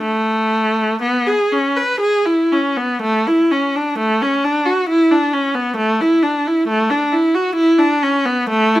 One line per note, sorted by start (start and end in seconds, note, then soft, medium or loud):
0.01 0.99 A3 medium
1.02 1.26 B3 medium
1.26 1.51 G#4 soft
1.52 1.76 C#4 soft
1.76 2.01 B4 soft
2.00 2.25 G#4 medium
2.25 2.52 E4 soft
2.52 2.78 C#4 soft
2.77 3.03 B3 soft
3.02 3.27 A3 medium
3.27 3.52 E4 medium
3.51 3.76 C#4 soft
3.75 3.99 D4 soft
3.98 4.21 A3 medium
4.22 4.45 C#4 soft
4.44 4.67 D4 soft
4.65 4.89 F#4 soft
4.89 5.11 E4 medium
5.11 5.34 D4 soft
5.33 5.56 C#4 soft
5.54 5.78 B3 medium
5.76 6.00 A3 medium
6.01 6.24 E4 medium
6.23 6.46 D4 soft
6.47 6.69 E4 soft
6.68 6.90 A3 medium
6.90 7.13 D4 medium
7.12 7.35 E4 medium
7.34 7.57 F#4 soft
7.55 7.79 E4 medium
7.78 8.02 D4 medium
8.03 8.27 C#4 medium
8.25 8.51 B3 medium
8.49 8.74 A3 medium
8.75 8.80 E4 medium